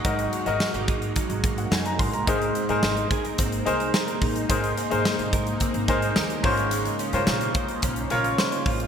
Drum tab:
HH |xxxx-xxxxxxx-xox|xxxx-xxxxxxx-xox|xxxx-xxxxxxx-xox|xxxx-xxxxxxx-xox|
TB |----x-------x---|----x-------x---|----x-------x---|----x-------x---|
SD |----o-------o---|----o-------o---|----o-------o---|----o-------o---|
BD |o-----o-o-o---o-|o-----o-o-----o-|o-----o-o-o---o-|------o-o-----o-|